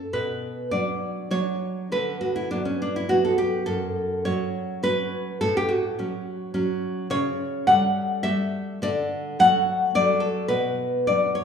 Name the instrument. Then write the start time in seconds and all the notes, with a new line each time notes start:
nylon-string guitar
0.13 B2 B4
0.71 F#3 D4 D5
1.31 F#3 D4 C#5
1.92 D3 B4
2.21 F#4
2.36 E4
2.51 F#3 B3 D4
2.65 C#4
2.82 D4
2.96 E4
3.09 F#3 B3 F#4
3.25 A4
3.38 G4
3.66 F#2 A4
4.25 F#3 C#4 C#5
4.83 F#3 C#4 B4
5.41 A2 A4
5.57 G4
5.69 F#4
5.99 F#3 C#4
6.54 F#3 C#4
7.10 C#3 C#5
7.67 G3 A3 F#5
8.23 G3 A3 E5
8.82 D3 D5
9.39 F#3 A3 F#5
9.95 F#3 A3 D5
10.20 A4
10.48 B2 B4
11.07 F#3 D4 D5
11.35 C#5